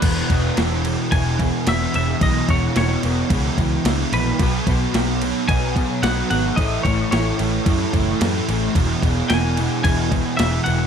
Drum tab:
CC |xxxxxxxx|xxxxxxxx|xxxxxxxx|xxxxxxxx|
SD |--o---o-|--o---o-|--o---o-|--o---o-|
BD |oo--oo--|oo--oo--|oo--oo--|oo--oo--|

CC |xxxxxxxx|
SD |--o---o-|
BD |oo--oo--|